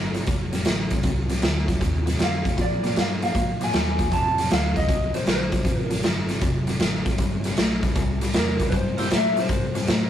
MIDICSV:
0, 0, Header, 1, 6, 480
1, 0, Start_track
1, 0, Tempo, 383877
1, 1305, Time_signature, 4, 2, 24, 8
1, 12628, End_track
2, 0, Start_track
2, 0, Title_t, "Clean electric guitar"
2, 0, Program_c, 0, 27
2, 2793, Note_on_c, 0, 77, 72
2, 3262, Note_off_c, 0, 77, 0
2, 3269, Note_on_c, 0, 74, 75
2, 3740, Note_off_c, 0, 74, 0
2, 3742, Note_on_c, 0, 77, 75
2, 3823, Note_off_c, 0, 77, 0
2, 4046, Note_on_c, 0, 77, 79
2, 4530, Note_off_c, 0, 77, 0
2, 4549, Note_on_c, 0, 80, 93
2, 5163, Note_off_c, 0, 80, 0
2, 5168, Note_on_c, 0, 81, 96
2, 5640, Note_off_c, 0, 81, 0
2, 5645, Note_on_c, 0, 77, 91
2, 5964, Note_on_c, 0, 75, 87
2, 5966, Note_off_c, 0, 77, 0
2, 6432, Note_off_c, 0, 75, 0
2, 6437, Note_on_c, 0, 72, 77
2, 6595, Note_off_c, 0, 72, 0
2, 6615, Note_on_c, 0, 72, 66
2, 7277, Note_off_c, 0, 72, 0
2, 7277, Note_on_c, 0, 70, 66
2, 7511, Note_off_c, 0, 70, 0
2, 10463, Note_on_c, 0, 70, 75
2, 10862, Note_off_c, 0, 70, 0
2, 10867, Note_on_c, 0, 71, 59
2, 10918, Note_off_c, 0, 71, 0
2, 10938, Note_on_c, 0, 72, 78
2, 11419, Note_off_c, 0, 72, 0
2, 11435, Note_on_c, 0, 76, 85
2, 11714, Note_off_c, 0, 76, 0
2, 11752, Note_on_c, 0, 72, 83
2, 12628, Note_off_c, 0, 72, 0
2, 12628, End_track
3, 0, Start_track
3, 0, Title_t, "Tonewheel organ"
3, 0, Program_c, 1, 16
3, 11218, Note_on_c, 1, 58, 60
3, 11232, Note_on_c, 1, 60, 56
3, 11236, Note_on_c, 1, 64, 53
3, 11244, Note_on_c, 1, 67, 66
3, 11368, Note_off_c, 1, 58, 0
3, 11375, Note_off_c, 1, 60, 0
3, 11377, Note_off_c, 1, 64, 0
3, 11381, Note_off_c, 1, 67, 0
3, 12628, End_track
4, 0, Start_track
4, 0, Title_t, "Overdriven electric guitar"
4, 0, Program_c, 2, 29
4, 0, Note_on_c, 2, 41, 85
4, 0, Note_on_c, 2, 50, 85
4, 153, Note_off_c, 2, 41, 0
4, 159, Note_off_c, 2, 50, 0
4, 184, Note_on_c, 2, 41, 64
4, 195, Note_on_c, 2, 48, 68
4, 323, Note_off_c, 2, 41, 0
4, 334, Note_off_c, 2, 48, 0
4, 338, Note_on_c, 2, 41, 70
4, 349, Note_on_c, 2, 48, 91
4, 631, Note_off_c, 2, 41, 0
4, 637, Note_off_c, 2, 48, 0
4, 660, Note_on_c, 2, 41, 69
4, 665, Note_on_c, 2, 48, 80
4, 806, Note_off_c, 2, 41, 0
4, 809, Note_off_c, 2, 48, 0
4, 820, Note_on_c, 2, 41, 77
4, 821, Note_on_c, 2, 50, 80
4, 1112, Note_off_c, 2, 41, 0
4, 1113, Note_off_c, 2, 50, 0
4, 1149, Note_on_c, 2, 41, 63
4, 1154, Note_on_c, 2, 48, 78
4, 1285, Note_off_c, 2, 41, 0
4, 1289, Note_off_c, 2, 48, 0
4, 1300, Note_on_c, 2, 41, 73
4, 1304, Note_on_c, 2, 48, 78
4, 1592, Note_off_c, 2, 41, 0
4, 1594, Note_off_c, 2, 48, 0
4, 1620, Note_on_c, 2, 41, 69
4, 1630, Note_on_c, 2, 48, 69
4, 1761, Note_off_c, 2, 41, 0
4, 1771, Note_off_c, 2, 48, 0
4, 1776, Note_on_c, 2, 41, 74
4, 1786, Note_on_c, 2, 50, 83
4, 2070, Note_off_c, 2, 41, 0
4, 2075, Note_off_c, 2, 50, 0
4, 2094, Note_on_c, 2, 41, 64
4, 2102, Note_on_c, 2, 48, 70
4, 2240, Note_off_c, 2, 41, 0
4, 2246, Note_off_c, 2, 48, 0
4, 2255, Note_on_c, 2, 41, 80
4, 2262, Note_on_c, 2, 48, 79
4, 2549, Note_off_c, 2, 41, 0
4, 2552, Note_off_c, 2, 48, 0
4, 2576, Note_on_c, 2, 41, 73
4, 2581, Note_on_c, 2, 48, 68
4, 2720, Note_off_c, 2, 41, 0
4, 2726, Note_off_c, 2, 48, 0
4, 2735, Note_on_c, 2, 41, 77
4, 2741, Note_on_c, 2, 50, 83
4, 3029, Note_off_c, 2, 41, 0
4, 3032, Note_off_c, 2, 50, 0
4, 3048, Note_on_c, 2, 41, 65
4, 3052, Note_on_c, 2, 48, 75
4, 3199, Note_off_c, 2, 41, 0
4, 3201, Note_off_c, 2, 48, 0
4, 3213, Note_on_c, 2, 46, 71
4, 3221, Note_on_c, 2, 53, 83
4, 3508, Note_off_c, 2, 46, 0
4, 3512, Note_off_c, 2, 53, 0
4, 3544, Note_on_c, 2, 46, 65
4, 3550, Note_on_c, 2, 53, 67
4, 3687, Note_off_c, 2, 46, 0
4, 3690, Note_off_c, 2, 53, 0
4, 3702, Note_on_c, 2, 46, 69
4, 3712, Note_on_c, 2, 55, 86
4, 3992, Note_off_c, 2, 46, 0
4, 3998, Note_off_c, 2, 55, 0
4, 4033, Note_on_c, 2, 46, 58
4, 4039, Note_on_c, 2, 53, 69
4, 4172, Note_off_c, 2, 46, 0
4, 4175, Note_off_c, 2, 53, 0
4, 4187, Note_on_c, 2, 46, 74
4, 4193, Note_on_c, 2, 53, 78
4, 4475, Note_off_c, 2, 46, 0
4, 4478, Note_off_c, 2, 53, 0
4, 4516, Note_on_c, 2, 46, 71
4, 4524, Note_on_c, 2, 53, 72
4, 4648, Note_off_c, 2, 46, 0
4, 4657, Note_off_c, 2, 53, 0
4, 4663, Note_on_c, 2, 46, 80
4, 4674, Note_on_c, 2, 55, 82
4, 4953, Note_off_c, 2, 46, 0
4, 4958, Note_off_c, 2, 55, 0
4, 4993, Note_on_c, 2, 46, 71
4, 5004, Note_on_c, 2, 53, 77
4, 5132, Note_off_c, 2, 46, 0
4, 5137, Note_off_c, 2, 53, 0
4, 5154, Note_on_c, 2, 41, 74
4, 5164, Note_on_c, 2, 48, 81
4, 5439, Note_off_c, 2, 41, 0
4, 5443, Note_off_c, 2, 48, 0
4, 5479, Note_on_c, 2, 41, 65
4, 5486, Note_on_c, 2, 48, 70
4, 5615, Note_off_c, 2, 41, 0
4, 5618, Note_off_c, 2, 48, 0
4, 5636, Note_on_c, 2, 41, 73
4, 5637, Note_on_c, 2, 50, 83
4, 5920, Note_off_c, 2, 41, 0
4, 5921, Note_off_c, 2, 50, 0
4, 5954, Note_on_c, 2, 41, 64
4, 5957, Note_on_c, 2, 48, 76
4, 6093, Note_off_c, 2, 41, 0
4, 6095, Note_off_c, 2, 48, 0
4, 6107, Note_on_c, 2, 41, 74
4, 6116, Note_on_c, 2, 48, 84
4, 6396, Note_off_c, 2, 41, 0
4, 6400, Note_off_c, 2, 48, 0
4, 6432, Note_on_c, 2, 41, 65
4, 6440, Note_on_c, 2, 48, 72
4, 6566, Note_off_c, 2, 41, 0
4, 6576, Note_off_c, 2, 48, 0
4, 6581, Note_on_c, 2, 41, 74
4, 6588, Note_on_c, 2, 50, 88
4, 6873, Note_off_c, 2, 41, 0
4, 6877, Note_off_c, 2, 50, 0
4, 6911, Note_on_c, 2, 41, 70
4, 6913, Note_on_c, 2, 48, 73
4, 7045, Note_off_c, 2, 41, 0
4, 7049, Note_off_c, 2, 48, 0
4, 7060, Note_on_c, 2, 41, 78
4, 7064, Note_on_c, 2, 48, 85
4, 7353, Note_off_c, 2, 41, 0
4, 7355, Note_off_c, 2, 48, 0
4, 7380, Note_on_c, 2, 41, 72
4, 7387, Note_on_c, 2, 48, 70
4, 7527, Note_off_c, 2, 41, 0
4, 7530, Note_off_c, 2, 48, 0
4, 7549, Note_on_c, 2, 41, 71
4, 7553, Note_on_c, 2, 50, 86
4, 7838, Note_off_c, 2, 41, 0
4, 7840, Note_off_c, 2, 50, 0
4, 7875, Note_on_c, 2, 41, 59
4, 7877, Note_on_c, 2, 48, 68
4, 8015, Note_off_c, 2, 41, 0
4, 8015, Note_off_c, 2, 48, 0
4, 8028, Note_on_c, 2, 41, 74
4, 8037, Note_on_c, 2, 48, 88
4, 8318, Note_off_c, 2, 41, 0
4, 8322, Note_off_c, 2, 48, 0
4, 8346, Note_on_c, 2, 41, 69
4, 8351, Note_on_c, 2, 48, 81
4, 8478, Note_off_c, 2, 41, 0
4, 8493, Note_off_c, 2, 48, 0
4, 8493, Note_on_c, 2, 41, 73
4, 8501, Note_on_c, 2, 50, 86
4, 8790, Note_off_c, 2, 41, 0
4, 8795, Note_off_c, 2, 50, 0
4, 8820, Note_on_c, 2, 41, 74
4, 8826, Note_on_c, 2, 48, 78
4, 8968, Note_off_c, 2, 41, 0
4, 8968, Note_off_c, 2, 48, 0
4, 8983, Note_on_c, 2, 48, 71
4, 8989, Note_on_c, 2, 55, 81
4, 9275, Note_off_c, 2, 48, 0
4, 9279, Note_off_c, 2, 55, 0
4, 9320, Note_on_c, 2, 48, 67
4, 9321, Note_on_c, 2, 55, 73
4, 9454, Note_off_c, 2, 48, 0
4, 9459, Note_off_c, 2, 55, 0
4, 9469, Note_on_c, 2, 48, 79
4, 9477, Note_on_c, 2, 57, 88
4, 9759, Note_off_c, 2, 48, 0
4, 9763, Note_off_c, 2, 57, 0
4, 9787, Note_on_c, 2, 48, 64
4, 9797, Note_on_c, 2, 55, 73
4, 9932, Note_off_c, 2, 48, 0
4, 9937, Note_off_c, 2, 55, 0
4, 9954, Note_on_c, 2, 48, 73
4, 9956, Note_on_c, 2, 55, 82
4, 10242, Note_off_c, 2, 48, 0
4, 10243, Note_off_c, 2, 55, 0
4, 10275, Note_on_c, 2, 48, 68
4, 10285, Note_on_c, 2, 55, 71
4, 10416, Note_off_c, 2, 48, 0
4, 10421, Note_off_c, 2, 55, 0
4, 10434, Note_on_c, 2, 48, 79
4, 10440, Note_on_c, 2, 57, 90
4, 10722, Note_off_c, 2, 48, 0
4, 10725, Note_off_c, 2, 57, 0
4, 10763, Note_on_c, 2, 48, 70
4, 10770, Note_on_c, 2, 55, 74
4, 10898, Note_off_c, 2, 48, 0
4, 10904, Note_off_c, 2, 55, 0
4, 10913, Note_on_c, 2, 48, 78
4, 10920, Note_on_c, 2, 55, 80
4, 11201, Note_off_c, 2, 48, 0
4, 11205, Note_off_c, 2, 55, 0
4, 11233, Note_on_c, 2, 48, 60
4, 11243, Note_on_c, 2, 55, 66
4, 11376, Note_off_c, 2, 48, 0
4, 11380, Note_off_c, 2, 55, 0
4, 11395, Note_on_c, 2, 48, 67
4, 11401, Note_on_c, 2, 57, 85
4, 11683, Note_off_c, 2, 48, 0
4, 11686, Note_off_c, 2, 57, 0
4, 11721, Note_on_c, 2, 48, 68
4, 11724, Note_on_c, 2, 55, 65
4, 11859, Note_off_c, 2, 55, 0
4, 11860, Note_off_c, 2, 48, 0
4, 11872, Note_on_c, 2, 48, 76
4, 11874, Note_on_c, 2, 55, 83
4, 12161, Note_off_c, 2, 48, 0
4, 12162, Note_off_c, 2, 55, 0
4, 12193, Note_on_c, 2, 48, 66
4, 12197, Note_on_c, 2, 55, 71
4, 12332, Note_off_c, 2, 48, 0
4, 12338, Note_off_c, 2, 55, 0
4, 12347, Note_on_c, 2, 48, 73
4, 12361, Note_on_c, 2, 57, 86
4, 12628, Note_off_c, 2, 48, 0
4, 12628, Note_off_c, 2, 57, 0
4, 12628, End_track
5, 0, Start_track
5, 0, Title_t, "Fingered electric bass"
5, 0, Program_c, 3, 33
5, 0, Note_on_c, 3, 31, 79
5, 336, Note_off_c, 3, 31, 0
5, 349, Note_on_c, 3, 29, 79
5, 813, Note_off_c, 3, 29, 0
5, 823, Note_on_c, 3, 33, 85
5, 1290, Note_off_c, 3, 33, 0
5, 1301, Note_on_c, 3, 36, 79
5, 1768, Note_off_c, 3, 36, 0
5, 1781, Note_on_c, 3, 38, 85
5, 2248, Note_off_c, 3, 38, 0
5, 2265, Note_on_c, 3, 39, 82
5, 2730, Note_off_c, 3, 39, 0
5, 2747, Note_on_c, 3, 41, 80
5, 3211, Note_off_c, 3, 41, 0
5, 3231, Note_on_c, 3, 46, 76
5, 3693, Note_off_c, 3, 46, 0
5, 3711, Note_on_c, 3, 43, 78
5, 4173, Note_off_c, 3, 43, 0
5, 4192, Note_on_c, 3, 44, 78
5, 4654, Note_off_c, 3, 44, 0
5, 4669, Note_on_c, 3, 39, 82
5, 5132, Note_off_c, 3, 39, 0
5, 5150, Note_on_c, 3, 41, 76
5, 5613, Note_off_c, 3, 41, 0
5, 5639, Note_on_c, 3, 38, 82
5, 6098, Note_off_c, 3, 38, 0
5, 6114, Note_on_c, 3, 36, 73
5, 6409, Note_off_c, 3, 36, 0
5, 6589, Note_on_c, 3, 34, 82
5, 6887, Note_off_c, 3, 34, 0
5, 7070, Note_on_c, 3, 33, 82
5, 7534, Note_off_c, 3, 33, 0
5, 7548, Note_on_c, 3, 31, 80
5, 8014, Note_off_c, 3, 31, 0
5, 8023, Note_on_c, 3, 29, 83
5, 8491, Note_off_c, 3, 29, 0
5, 8512, Note_on_c, 3, 33, 88
5, 8977, Note_off_c, 3, 33, 0
5, 8983, Note_on_c, 3, 31, 83
5, 9452, Note_off_c, 3, 31, 0
5, 9477, Note_on_c, 3, 34, 82
5, 9939, Note_off_c, 3, 34, 0
5, 9950, Note_on_c, 3, 36, 81
5, 10416, Note_off_c, 3, 36, 0
5, 10436, Note_on_c, 3, 40, 77
5, 10899, Note_off_c, 3, 40, 0
5, 10909, Note_on_c, 3, 43, 78
5, 11376, Note_off_c, 3, 43, 0
5, 11409, Note_on_c, 3, 46, 84
5, 11866, Note_off_c, 3, 46, 0
5, 11873, Note_on_c, 3, 43, 83
5, 12338, Note_off_c, 3, 43, 0
5, 12358, Note_on_c, 3, 45, 82
5, 12628, Note_off_c, 3, 45, 0
5, 12628, End_track
6, 0, Start_track
6, 0, Title_t, "Drums"
6, 180, Note_on_c, 9, 42, 53
6, 194, Note_on_c, 9, 38, 31
6, 305, Note_off_c, 9, 42, 0
6, 319, Note_off_c, 9, 38, 0
6, 331, Note_on_c, 9, 42, 73
6, 343, Note_on_c, 9, 36, 97
6, 345, Note_on_c, 9, 38, 32
6, 456, Note_off_c, 9, 42, 0
6, 468, Note_off_c, 9, 36, 0
6, 470, Note_off_c, 9, 38, 0
6, 658, Note_on_c, 9, 42, 57
6, 672, Note_on_c, 9, 38, 32
6, 783, Note_off_c, 9, 42, 0
6, 797, Note_off_c, 9, 38, 0
6, 810, Note_on_c, 9, 42, 77
6, 824, Note_on_c, 9, 38, 100
6, 935, Note_off_c, 9, 42, 0
6, 949, Note_off_c, 9, 38, 0
6, 1131, Note_on_c, 9, 42, 64
6, 1141, Note_on_c, 9, 36, 78
6, 1145, Note_on_c, 9, 38, 32
6, 1256, Note_off_c, 9, 42, 0
6, 1266, Note_off_c, 9, 36, 0
6, 1270, Note_off_c, 9, 38, 0
6, 1291, Note_on_c, 9, 42, 79
6, 1298, Note_on_c, 9, 36, 94
6, 1305, Note_on_c, 9, 38, 28
6, 1416, Note_off_c, 9, 42, 0
6, 1423, Note_off_c, 9, 36, 0
6, 1430, Note_off_c, 9, 38, 0
6, 1619, Note_on_c, 9, 42, 57
6, 1633, Note_on_c, 9, 38, 30
6, 1744, Note_off_c, 9, 42, 0
6, 1758, Note_off_c, 9, 38, 0
6, 1778, Note_on_c, 9, 42, 76
6, 1792, Note_on_c, 9, 38, 104
6, 1903, Note_off_c, 9, 42, 0
6, 1917, Note_off_c, 9, 38, 0
6, 2104, Note_on_c, 9, 36, 68
6, 2106, Note_on_c, 9, 42, 55
6, 2120, Note_on_c, 9, 38, 29
6, 2229, Note_off_c, 9, 36, 0
6, 2231, Note_off_c, 9, 42, 0
6, 2245, Note_off_c, 9, 38, 0
6, 2263, Note_on_c, 9, 36, 98
6, 2265, Note_on_c, 9, 42, 75
6, 2279, Note_on_c, 9, 38, 31
6, 2388, Note_off_c, 9, 36, 0
6, 2390, Note_off_c, 9, 42, 0
6, 2404, Note_off_c, 9, 38, 0
6, 2587, Note_on_c, 9, 42, 58
6, 2601, Note_on_c, 9, 38, 33
6, 2712, Note_off_c, 9, 42, 0
6, 2726, Note_off_c, 9, 38, 0
6, 2743, Note_on_c, 9, 42, 75
6, 2757, Note_on_c, 9, 38, 99
6, 2868, Note_off_c, 9, 42, 0
6, 2882, Note_off_c, 9, 38, 0
6, 3066, Note_on_c, 9, 36, 78
6, 3073, Note_on_c, 9, 42, 54
6, 3087, Note_on_c, 9, 38, 32
6, 3191, Note_off_c, 9, 36, 0
6, 3198, Note_off_c, 9, 42, 0
6, 3212, Note_off_c, 9, 38, 0
6, 3224, Note_on_c, 9, 36, 94
6, 3226, Note_on_c, 9, 42, 66
6, 3240, Note_on_c, 9, 38, 28
6, 3349, Note_off_c, 9, 36, 0
6, 3351, Note_off_c, 9, 42, 0
6, 3365, Note_off_c, 9, 38, 0
6, 3548, Note_on_c, 9, 42, 53
6, 3562, Note_on_c, 9, 38, 30
6, 3673, Note_off_c, 9, 42, 0
6, 3687, Note_off_c, 9, 38, 0
6, 3705, Note_on_c, 9, 42, 71
6, 3719, Note_on_c, 9, 38, 98
6, 3830, Note_off_c, 9, 42, 0
6, 3844, Note_off_c, 9, 38, 0
6, 4031, Note_on_c, 9, 42, 54
6, 4044, Note_on_c, 9, 38, 29
6, 4156, Note_off_c, 9, 42, 0
6, 4169, Note_off_c, 9, 38, 0
6, 4186, Note_on_c, 9, 42, 75
6, 4187, Note_on_c, 9, 36, 98
6, 4200, Note_on_c, 9, 38, 33
6, 4311, Note_off_c, 9, 42, 0
6, 4312, Note_off_c, 9, 36, 0
6, 4325, Note_off_c, 9, 38, 0
6, 4511, Note_on_c, 9, 42, 55
6, 4525, Note_on_c, 9, 38, 31
6, 4636, Note_off_c, 9, 42, 0
6, 4650, Note_off_c, 9, 38, 0
6, 4666, Note_on_c, 9, 42, 72
6, 4680, Note_on_c, 9, 38, 101
6, 4791, Note_off_c, 9, 42, 0
6, 4805, Note_off_c, 9, 38, 0
6, 4988, Note_on_c, 9, 42, 60
6, 4989, Note_on_c, 9, 36, 77
6, 5001, Note_on_c, 9, 38, 32
6, 5113, Note_off_c, 9, 42, 0
6, 5114, Note_off_c, 9, 36, 0
6, 5126, Note_off_c, 9, 38, 0
6, 5150, Note_on_c, 9, 36, 90
6, 5151, Note_on_c, 9, 42, 70
6, 5164, Note_on_c, 9, 38, 29
6, 5275, Note_off_c, 9, 36, 0
6, 5276, Note_off_c, 9, 42, 0
6, 5289, Note_off_c, 9, 38, 0
6, 5480, Note_on_c, 9, 42, 61
6, 5493, Note_on_c, 9, 38, 32
6, 5605, Note_off_c, 9, 42, 0
6, 5618, Note_off_c, 9, 38, 0
6, 5635, Note_on_c, 9, 42, 75
6, 5648, Note_on_c, 9, 38, 101
6, 5760, Note_off_c, 9, 42, 0
6, 5773, Note_off_c, 9, 38, 0
6, 5952, Note_on_c, 9, 36, 67
6, 5955, Note_on_c, 9, 42, 57
6, 5969, Note_on_c, 9, 38, 32
6, 6077, Note_off_c, 9, 36, 0
6, 6080, Note_off_c, 9, 42, 0
6, 6094, Note_off_c, 9, 38, 0
6, 6110, Note_on_c, 9, 42, 82
6, 6111, Note_on_c, 9, 36, 104
6, 6123, Note_on_c, 9, 38, 34
6, 6235, Note_off_c, 9, 42, 0
6, 6236, Note_off_c, 9, 36, 0
6, 6248, Note_off_c, 9, 38, 0
6, 6429, Note_on_c, 9, 42, 56
6, 6442, Note_on_c, 9, 38, 33
6, 6554, Note_off_c, 9, 42, 0
6, 6567, Note_off_c, 9, 38, 0
6, 6582, Note_on_c, 9, 42, 72
6, 6596, Note_on_c, 9, 38, 104
6, 6707, Note_off_c, 9, 42, 0
6, 6721, Note_off_c, 9, 38, 0
6, 6903, Note_on_c, 9, 42, 61
6, 6907, Note_on_c, 9, 36, 78
6, 6916, Note_on_c, 9, 38, 31
6, 7028, Note_off_c, 9, 42, 0
6, 7032, Note_off_c, 9, 36, 0
6, 7042, Note_off_c, 9, 38, 0
6, 7061, Note_on_c, 9, 42, 72
6, 7063, Note_on_c, 9, 36, 91
6, 7074, Note_on_c, 9, 38, 30
6, 7186, Note_off_c, 9, 42, 0
6, 7188, Note_off_c, 9, 36, 0
6, 7199, Note_off_c, 9, 38, 0
6, 7385, Note_on_c, 9, 42, 54
6, 7398, Note_on_c, 9, 38, 31
6, 7510, Note_off_c, 9, 42, 0
6, 7523, Note_off_c, 9, 38, 0
6, 7543, Note_on_c, 9, 42, 69
6, 7557, Note_on_c, 9, 38, 100
6, 7668, Note_off_c, 9, 42, 0
6, 7682, Note_off_c, 9, 38, 0
6, 7861, Note_on_c, 9, 42, 51
6, 7875, Note_on_c, 9, 38, 34
6, 7986, Note_off_c, 9, 42, 0
6, 8000, Note_off_c, 9, 38, 0
6, 8019, Note_on_c, 9, 42, 75
6, 8024, Note_on_c, 9, 36, 100
6, 8033, Note_on_c, 9, 38, 31
6, 8144, Note_off_c, 9, 42, 0
6, 8149, Note_off_c, 9, 36, 0
6, 8158, Note_off_c, 9, 38, 0
6, 8341, Note_on_c, 9, 42, 56
6, 8354, Note_on_c, 9, 38, 31
6, 8466, Note_off_c, 9, 42, 0
6, 8479, Note_off_c, 9, 38, 0
6, 8498, Note_on_c, 9, 42, 74
6, 8511, Note_on_c, 9, 38, 99
6, 8623, Note_off_c, 9, 42, 0
6, 8637, Note_off_c, 9, 38, 0
6, 8824, Note_on_c, 9, 42, 60
6, 8827, Note_on_c, 9, 36, 75
6, 8838, Note_on_c, 9, 38, 34
6, 8949, Note_off_c, 9, 42, 0
6, 8952, Note_off_c, 9, 36, 0
6, 8963, Note_off_c, 9, 38, 0
6, 8978, Note_on_c, 9, 42, 72
6, 8985, Note_on_c, 9, 36, 96
6, 8992, Note_on_c, 9, 38, 31
6, 9103, Note_off_c, 9, 42, 0
6, 9110, Note_off_c, 9, 36, 0
6, 9117, Note_off_c, 9, 38, 0
6, 9302, Note_on_c, 9, 42, 58
6, 9316, Note_on_c, 9, 38, 30
6, 9427, Note_off_c, 9, 42, 0
6, 9441, Note_off_c, 9, 38, 0
6, 9463, Note_on_c, 9, 42, 81
6, 9477, Note_on_c, 9, 38, 104
6, 9588, Note_off_c, 9, 42, 0
6, 9602, Note_off_c, 9, 38, 0
6, 9788, Note_on_c, 9, 42, 57
6, 9790, Note_on_c, 9, 36, 69
6, 9802, Note_on_c, 9, 38, 32
6, 9913, Note_off_c, 9, 42, 0
6, 9915, Note_off_c, 9, 36, 0
6, 9927, Note_off_c, 9, 38, 0
6, 9946, Note_on_c, 9, 42, 78
6, 9950, Note_on_c, 9, 36, 108
6, 9960, Note_on_c, 9, 38, 34
6, 10071, Note_off_c, 9, 42, 0
6, 10075, Note_off_c, 9, 36, 0
6, 10085, Note_off_c, 9, 38, 0
6, 10269, Note_on_c, 9, 42, 57
6, 10283, Note_on_c, 9, 38, 30
6, 10394, Note_off_c, 9, 42, 0
6, 10408, Note_off_c, 9, 38, 0
6, 10421, Note_on_c, 9, 42, 77
6, 10435, Note_on_c, 9, 38, 104
6, 10546, Note_off_c, 9, 42, 0
6, 10560, Note_off_c, 9, 38, 0
6, 10746, Note_on_c, 9, 42, 62
6, 10750, Note_on_c, 9, 36, 74
6, 10760, Note_on_c, 9, 38, 31
6, 10871, Note_off_c, 9, 42, 0
6, 10875, Note_off_c, 9, 36, 0
6, 10885, Note_off_c, 9, 38, 0
6, 10900, Note_on_c, 9, 42, 70
6, 10908, Note_on_c, 9, 36, 88
6, 10914, Note_on_c, 9, 38, 28
6, 11025, Note_off_c, 9, 42, 0
6, 11033, Note_off_c, 9, 36, 0
6, 11039, Note_off_c, 9, 38, 0
6, 11227, Note_on_c, 9, 42, 54
6, 11241, Note_on_c, 9, 38, 30
6, 11352, Note_off_c, 9, 42, 0
6, 11366, Note_off_c, 9, 38, 0
6, 11386, Note_on_c, 9, 42, 77
6, 11400, Note_on_c, 9, 38, 101
6, 11511, Note_off_c, 9, 42, 0
6, 11525, Note_off_c, 9, 38, 0
6, 11714, Note_on_c, 9, 42, 54
6, 11728, Note_on_c, 9, 38, 32
6, 11839, Note_off_c, 9, 42, 0
6, 11853, Note_off_c, 9, 38, 0
6, 11866, Note_on_c, 9, 42, 72
6, 11870, Note_on_c, 9, 36, 99
6, 11880, Note_on_c, 9, 38, 32
6, 11991, Note_off_c, 9, 42, 0
6, 11995, Note_off_c, 9, 36, 0
6, 12005, Note_off_c, 9, 38, 0
6, 12193, Note_on_c, 9, 42, 55
6, 12206, Note_on_c, 9, 38, 31
6, 12318, Note_off_c, 9, 42, 0
6, 12331, Note_off_c, 9, 38, 0
6, 12346, Note_on_c, 9, 42, 72
6, 12359, Note_on_c, 9, 38, 105
6, 12471, Note_off_c, 9, 42, 0
6, 12484, Note_off_c, 9, 38, 0
6, 12628, End_track
0, 0, End_of_file